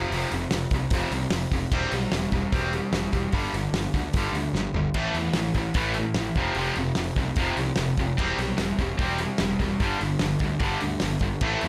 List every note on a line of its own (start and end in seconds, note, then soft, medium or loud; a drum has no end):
0.00 0.11 F2 medium
0.00 0.11 C3 medium
0.00 0.11 F3 loud
0.11 0.24 F1 medium
0.11 0.31 F2 medium
0.11 0.32 C3 medium
0.11 0.32 F3 loud
0.11 open hi-hat medium
0.31 0.45 F1 medium
0.31 0.51 F2 medium
0.31 0.51 C3 medium
0.31 open hi-hat medium
0.51 0.65 F1 medium
0.51 0.71 F2 medium
0.51 0.71 C3 medium
0.51 snare loud
0.51 open hi-hat medium
0.71 0.84 C2 medium
0.71 0.91 F2 medium
0.71 0.91 C3 medium
0.71 kick medium
0.71 open hi-hat medium
0.90 1.04 F1 medium
0.90 1.12 F2 medium
0.90 1.12 C3 medium
0.90 1.12 F3 loud
0.90 kick loud
0.90 open hi-hat medium
1.11 1.25 C2 medium
1.11 1.31 F2 medium
1.11 1.31 C3 medium
1.11 open hi-hat medium
1.30 1.45 F1 loud
1.30 1.51 F2 medium
1.30 1.51 C3 medium
1.30 snare loud
1.30 open hi-hat medium
1.51 1.65 F1 medium
1.51 1.71 F2 medium
1.51 1.71 C3 medium
1.51 kick medium
1.51 open hi-hat medium
1.72 1.85 E1 medium
1.72 1.92 C3 medium
1.72 1.92 G3 medium
1.72 1.92 C4 loud
1.72 kick loud
1.72 crash medium
1.92 2.06 B1 medium
1.92 2.11 C3 medium
1.92 2.11 G3 medium
1.92 open hi-hat medium
2.12 2.26 E1 medium
2.12 2.31 C3 medium
2.12 2.31 G3 medium
2.12 snare loud
2.12 open hi-hat medium
2.32 2.45 E1 medium
2.32 2.51 C3 medium
2.32 2.51 G3 medium
2.32 kick medium
2.32 open hi-hat medium
2.52 2.79 E1 medium
2.52 2.72 C3 medium
2.52 2.72 G3 medium
2.52 2.72 C4 loud
2.52 kick loud
2.52 open hi-hat medium
2.73 2.91 C3 medium
2.73 2.92 G3 medium
2.73 open hi-hat medium
2.92 3.06 E1 loud
2.92 3.11 C3 medium
2.92 3.11 G3 medium
2.92 snare loud
2.92 open hi-hat medium
3.13 3.26 E1 medium
3.13 3.31 C3 medium
3.13 3.32 G3 medium
3.13 kick medium
3.13 open hi-hat medium
3.32 3.46 G1 medium
3.32 3.52 G2 medium
3.32 3.53 D3 medium
3.32 3.53 G3 medium
3.32 kick loud
3.32 open hi-hat medium
3.53 3.67 G1 medium
3.53 3.72 G2 medium
3.53 3.73 D3 medium
3.53 open hi-hat medium
3.73 3.86 G1 medium
3.73 3.93 G2 medium
3.73 3.93 D3 medium
3.73 snare loud
3.73 open hi-hat medium
3.94 4.07 D2 medium
3.94 4.13 G2 medium
3.94 4.13 D3 medium
3.94 kick medium
3.94 open hi-hat medium
4.13 4.27 G1 medium
4.13 4.35 G2 medium
4.13 4.35 D3 medium
4.13 4.35 G3 loud
4.13 kick loud
4.13 open hi-hat medium
4.33 4.47 D2 medium
4.33 4.54 G2 medium
4.33 4.54 D3 medium
4.33 open hi-hat medium
4.53 4.67 G1 loud
4.53 snare medium
4.57 4.74 G2 medium
4.57 4.74 D3 medium
4.73 4.87 G1 medium
4.73 4.94 G2 medium
4.73 4.94 D3 medium
4.73 floor tom medium
4.94 5.08 A1 loud
4.94 5.15 A2 medium
4.94 5.15 E3 medium
4.94 5.15 A3 medium
4.94 kick loud
4.94 crash medium
4.94 splash medium
5.14 5.28 E2 loud
5.14 5.34 A2 medium
5.14 5.34 E3 medium
5.14 open hi-hat medium
5.33 5.48 A1 medium
5.33 5.54 A2 medium
5.33 snare loud
5.33 open hi-hat medium
5.38 5.55 E3 medium
5.54 5.68 A1 medium
5.54 5.75 A2 medium
5.54 5.75 E3 medium
5.54 kick medium
5.54 open hi-hat medium
5.74 6.02 A1 medium
5.74 5.95 A2 medium
5.74 5.95 E3 loud
5.74 5.96 A3 medium
5.74 kick loud
5.74 open hi-hat medium
5.94 open hi-hat medium
5.99 6.16 A2 medium
5.99 6.16 E3 medium
6.14 6.29 A1 loud
6.14 6.36 A2 medium
6.14 6.36 E3 medium
6.14 snare loud
6.14 open hi-hat medium
6.36 6.50 F1 medium
6.36 6.56 F2 medium
6.36 6.56 C3 medium
6.36 6.56 F3 medium
6.36 kick loud
6.36 open hi-hat soft
6.55 6.69 F1 loud
6.55 6.76 F2 medium
6.55 6.77 C3 loud
6.55 6.76 F3 loud
6.55 open hi-hat medium
6.75 6.90 F1 loud
6.75 6.95 F2 medium
6.75 6.96 C3 medium
6.75 open hi-hat medium
6.95 7.09 F1 medium
6.95 7.15 F2 medium
6.95 7.16 C3 medium
6.95 snare loud
6.95 open hi-hat medium
7.16 7.30 C2 medium
7.16 7.36 F2 medium
7.16 7.36 C3 medium
7.16 kick medium
7.16 open hi-hat medium
7.36 7.50 F1 loud
7.36 7.57 F2 medium
7.36 7.57 C3 medium
7.36 7.58 F3 loud
7.36 kick loud
7.36 open hi-hat medium
7.56 7.70 C2 medium
7.56 7.77 F2 medium
7.56 7.77 C3 medium
7.56 open hi-hat medium
7.76 7.91 F1 loud
7.76 snare loud
7.76 open hi-hat medium
7.80 7.98 F2 medium
7.80 7.98 C3 medium
7.97 8.11 F1 medium
7.97 8.18 F2 medium
7.97 8.17 C3 medium
7.97 kick medium
7.97 open hi-hat soft
8.18 8.32 E1 loud
8.18 8.38 C3 medium
8.18 8.38 G3 medium
8.18 8.39 C4 medium
8.18 kick loud
8.18 crash medium
8.38 8.51 B1 medium
8.38 8.58 C3 medium
8.38 open hi-hat medium
8.42 8.59 G3 medium
8.57 8.72 E1 medium
8.57 8.76 C3 medium
8.57 8.76 G3 medium
8.57 snare loud
8.57 open hi-hat medium
8.61 8.78 C3 medium
8.61 8.79 G3 medium
8.79 8.92 E1 medium
8.79 8.98 C3 medium
8.79 8.99 G3 medium
8.79 kick medium
8.79 open hi-hat medium
8.98 9.25 E1 loud
8.98 9.18 C3 medium
8.98 9.20 G3 medium
8.98 kick loud
8.98 open hi-hat medium
9.02 9.18 C3 medium
9.02 9.20 C4 loud
9.18 9.38 C3 medium
9.18 9.38 G3 medium
9.18 open hi-hat medium
9.38 9.53 E1 medium
9.38 9.59 C3 medium
9.38 9.59 G3 medium
9.38 snare loud
9.38 open hi-hat medium
9.60 9.73 E1 medium
9.60 9.79 C3 medium
9.60 9.79 G3 medium
9.60 kick medium
9.60 open hi-hat medium
9.80 9.93 G1 medium
9.80 10.00 G2 medium
9.80 10.00 D3 medium
9.80 10.01 G3 medium
9.80 kick loud
9.80 open hi-hat medium
10.01 10.14 G1 medium
10.01 10.20 G2 medium
10.01 10.20 D3 medium
10.01 open hi-hat medium
10.19 10.34 G1 medium
10.19 10.40 G2 medium
10.19 10.40 D3 medium
10.19 snare loud
10.19 open hi-hat medium
10.39 10.54 D2 medium
10.39 10.60 G2 medium
10.39 kick medium
10.39 open hi-hat medium
10.44 10.61 D3 medium
10.60 10.74 G1 medium
10.60 10.81 G2 medium
10.60 10.81 D3 medium
10.60 10.81 G3 loud
10.60 kick loud
10.60 open hi-hat medium
10.80 10.96 D2 medium
10.80 11.00 G2 medium
10.80 11.00 D3 medium
10.80 open hi-hat medium
11.00 11.15 G1 medium
11.00 11.20 G2 medium
11.00 11.20 D3 medium
11.00 snare loud
11.00 open hi-hat medium
11.19 11.34 G1 medium
11.19 11.41 G2 medium
11.19 11.40 D3 medium
11.19 kick medium
11.19 open hi-hat medium
11.41 11.55 A1 medium
11.41 11.61 A2 medium
11.41 11.61 E3 medium
11.41 11.62 A3 medium
11.41 kick loud
11.41 crash medium
11.61 11.68 E2 medium
11.61 11.68 A2 medium
11.61 11.68 E3 medium
11.61 open hi-hat medium